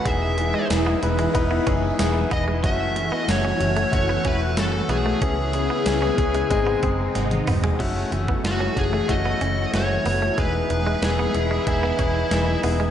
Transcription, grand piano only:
\new Staff \with { instrumentName = "Grand piano" } { \time 4/4 \key fis \dorian \tempo 4 = 93 << { r1 | r1 | r2. <bis' fis''>16 <gis' dis''>16 <fis' bis'>16 <dis' gis'>16~ | <dis' gis'>16 r2. r8. |
r1 | } \\ { <b dis' e' gis'>8 <b dis' e' gis'>8 <b dis' e' gis'>8 <b dis' e' b'>8 <b dis' e' b'>8 <b dis' e' gis'>8 <b dis' e' gis'>8 <b dis' e' gis'>8 | <a cis' e' fis'>8 <a cis' e' fis'>8 <a cis' e' fis'>8 <a cis' e' fis'>8 <a cis' e' fis'>8 <a cis' e' fis'>8 <a cis' e' fis'>8 <a cis' e' fis'>8 | <b cis' e' gis'>8 <b cis' e' gis'>8 <b cis' e' gis'>8 <b cis' e' gis'>8 <gis bis dis' gis'>8 <gis bis dis' gis'>8 r4 | <a cis' e' fis'>8 <a cis' e' fis'>8 <a cis' e' fis'>8 <a cis' e' fis'>8 <a cis' e' fis'>8 <a cis' e' fis'>8 <a cis' e' fis'>8 <a cis' e' fis'>8 |
<b dis' e' gis'>8 <b dis' e' gis'>8 <b dis' e' gis'>8 <b dis' e' gis'>8 <b dis' e' gis'>8 <b dis' e' gis'>8 <b dis' e' gis'>8 <b dis' e' gis'>8 | } >> }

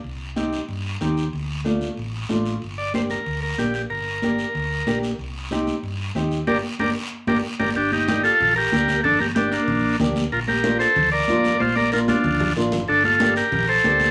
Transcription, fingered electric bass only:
\new Staff \with { instrumentName = "Fingered electric bass" } { \clef bass \time 4/4 \key g \minor \tempo 4 = 187 c,2 g,4 ees,4 | d,2 a,,4 a,,4 | g,,2 d,4 bes,,4 | g,,2 d,4 bes,,4 |
c,2 g,4 ees,4 | g,,8 r8 g,,8 r4 g,,8 r8 g,,8 | g,,2 bes,,4 d,4 | g,,2 bes,,4 d,4 |
bes,,2 d,4 f,4 | bes,,2 d,4 a,,8 g,,8 | g,,2 bes,,4 d,4 | }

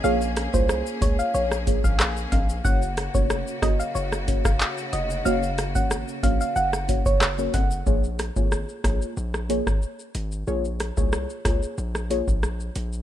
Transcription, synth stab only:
\new Staff \with { instrumentName = "Synth stab" } { \time 4/4 \key bes \minor \tempo 4 = 92 <bes f' aes' des''>16 r8 <bes f' aes' des''>8. <bes f' aes' des''>8 r8 <bes f' aes' des''>16 r4 r16 | <bes des' ges' des''>16 r8 <bes des' ges' des''>8. <bes des' ges' des''>8 r8 <bes des' ges' des''>16 r4 r16 | <bes des' ges' des''>16 r8 <bes des' ges' des''>8. <bes des' ges' des''>8 r8 <bes des' ges' des''>16 r8 <bes des' ges' des''>16 r8 | <bes f' aes' des''>16 r8 <bes f' aes' des''>8. <bes f' aes' des''>8 r8 <bes f' aes' des''>16 r4 r16 |
<bes f' aes' des''>16 r8 <bes f' aes' des''>8. <bes f' aes' des''>8 r8 <bes f' aes' des''>16 r4 r16 | }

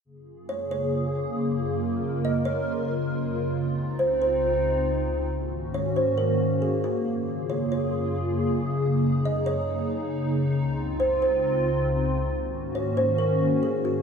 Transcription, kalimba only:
\new Staff \with { instrumentName = "Kalimba" } { \time 4/4 \key ges \lydian \tempo 4 = 137 r4 des''8 des''2~ des''8 | r4 ees''8 des''4. r4 | r4 c''8 c''2~ c''8 | r4 des''8 c''8 bes'4 aes'8 ges'8 |
r4 des''8 des''2~ des''8 | r4 ees''8 des''4. r4 | r4 c''8 c''2~ c''8 | r4 des''8 c''8 bes'4 aes'8 ges'8 | }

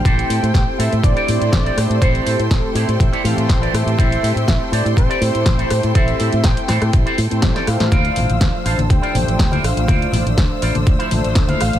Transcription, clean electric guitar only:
\new Staff \with { instrumentName = "Clean electric guitar" } { \time 4/4 \key a \phrygian \tempo 4 = 122 << { r1 | r4. d''8 e''8 f''8 g''8 a''8 | r1 | r1 |
r1 | r1 | } \\ { <e' g' a' c''>8. r8. <e' g' a' c''>16 r8 <e' g' a' d''>16 r8. <e' g' a' d''>16 r8 | <e' g' a' c''>8. r8. <e' g' a' c''>16 r8 <e' g' a' d''>16 r8. <e' g' a' d''>16 r8 | <e' g' a' c''>8. r8. <e' g' a' c''>16 r8 <e' g' a' d''>16 r8. <e' g' a' c''>16 r8 | <e' g' a' c''>8. r8. <e' g' a' c''>16 r8 <e' g' a' c''>16 r8. <e' g' a' d''>16 r8 |
<e' f' c'' d''>8. r8. <e' f' c'' f''>16 r8 <e' f' c'' d''>16 r8. <e' f' c'' d''>16 r8 | <e' f' c'' d''>8. r8. <e' f' c'' d''>16 r8 <e' f' c'' e''>16 r8. <e' f' c'' f''>16 r8 | } >> }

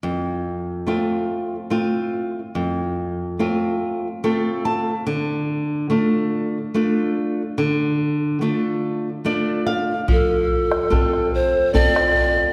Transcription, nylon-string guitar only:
\new Staff \with { instrumentName = "Nylon-string guitar" } { \time 3/4 \key f \major \tempo 4 = 72 << { r2. | r2 a'8 a''8 | r2. | r2 d''8 f''8 |
r2. | } \\ { f,4 <a c' f'>4 <a c' f'>4 | f,4 <a c' f'>4 <a c' f'>4 | d4 <a d' f'>4 <a d' f'>4 | d4 <a d' f'>4 <a d' f'>4 |
f4 <c' f' a'>4 <c' f' a'>4 | } >> }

